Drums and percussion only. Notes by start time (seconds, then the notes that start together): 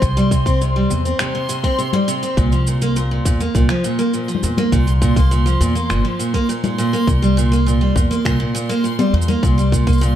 0.02 kick, shaker
0.17 shaker
0.31 kick, shaker
0.46 kick, shaker
0.62 shaker
0.91 shaker
1.06 shaker
1.19 finger snap, shaker
1.49 shaker
1.64 kick, shaker
1.79 shaker
1.93 low conga, shaker
2.08 shaker
2.23 shaker
2.37 kick, shaker
2.52 shaker
2.67 shaker
2.82 shaker
2.96 shaker
3.25 kick, shaker
3.41 shaker
3.55 kick, shaker
3.69 finger snap
3.84 shaker
3.99 shaker
4.14 shaker
4.29 shaker
4.35 low conga
4.43 shaker
4.57 low conga, shaker
4.72 kick, shaker
4.88 shaker
5.02 kick, shaker
5.16 kick, shaker
5.32 shaker
5.47 shaker
5.62 shaker
5.76 shaker
5.90 finger snap, shaker
6.20 shaker
6.34 kick, shaker
6.50 shaker
6.64 low conga, shaker
6.79 shaker
6.94 shaker
7.07 kick, shaker
7.24 shaker
7.38 shaker
7.53 shaker
7.68 shaker
7.96 kick, shaker
8.12 shaker
8.25 finger snap, kick, shaker
8.56 shaker
8.71 shaker
8.85 shaker
8.99 low conga, shaker
9.22 shaker
9.29 low conga, shaker
9.43 kick, shaker
9.59 shaker
9.72 kick, shaker
9.87 kick, shaker
9.93 shaker
9.98 shaker
10.03 shaker